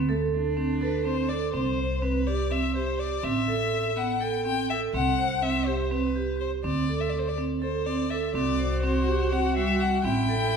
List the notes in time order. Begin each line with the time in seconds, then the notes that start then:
Already playing: D2 B3
0.09 A3 A4
0.33 D4
0.57 C4
0.81 A4 B4
1.05 C4 C5
1.29 A4 D5
1.53 C2 C4 C5
1.78 C5
2.02 C4 B4
2.27 G4 D5
2.51 C4 E5
2.75 G4 C5
2.99 D5
3.23 A1 C4 E5
3.48 A4
3.96 B3 F#5
4.21 A4 G5
4.45 C4 G5
4.70 A4 E5
4.93 C2 C4 F#5
5.18 C5
5.42 C4 E5
5.67 G4 C5
5.84 C5
5.91 C4 B4
6.16 G4
6.40 C5
6.64 D2 C4 D5
6.89 A4
7.01 E5
7.10 D5
7.19 C5
7.28 D5
7.38 C4
7.62 A4 C5
7.86 C4 D5
8.10 A4 E5
8.34 C2 C4 F#4 D5
8.59 C5
8.83 C4 C5
9.08 G4
9.32 C4 F#5
9.56 G3 E5
9.80 F#5
10.04 A1 C4 E4 G5
10.29 A4